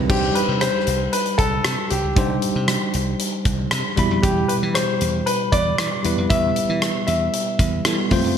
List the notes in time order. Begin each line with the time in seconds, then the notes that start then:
Already playing: G3 C4 D#4 E4 B4
0.08 C2 G3 D4 D#4 G4 C5, kick, crash
0.35 B4, closed hi-hat
0.49 C3
0.61 C5, cross-stick, closed hi-hat
0.87 C2, closed hi-hat
1.13 B4, closed hi-hat
1.26 closed hi-hat
1.38 C2 A4, kick, closed hi-hat
1.65 C3, cross-stick, closed hi-hat
1.90 C2 G4, closed hi-hat
2.04 C#2
2.16 C2 G3 D4 D#4 C5, kick, closed hi-hat
2.42 closed hi-hat
2.56 C3
2.68 cross-stick, closed hi-hat
2.94 C2, closed hi-hat
3.20 closed hi-hat
3.45 C2, kick, closed hi-hat
3.71 C3, cross-stick, closed hi-hat
3.97 E2 B2 G3 E4 B5, kick, closed hi-hat
4.11 F2
4.22 E2 G4, kick, closed hi-hat
4.48 B4, closed hi-hat
4.63 E3
4.74 C5, cross-stick, closed hi-hat
5.01 E2, closed hi-hat
5.26 B4, closed hi-hat
5.52 E2 D5, kick, closed hi-hat
5.78 E3, cross-stick, closed hi-hat
6.03 E2 G3 B3 E4 B4, closed hi-hat
6.18 F2
6.30 E2 E5, kick, closed hi-hat
6.56 closed hi-hat
6.69 E3
6.82 cross-stick, closed hi-hat
7.07 E2 E5, closed hi-hat
7.34 closed hi-hat
7.59 E2, kick, closed hi-hat
7.85 E3 G3 B3 E4 A4, cross-stick, closed hi-hat
8.10 F2 A3 C4 F4 C5, kick, open hi-hat
8.24 F#2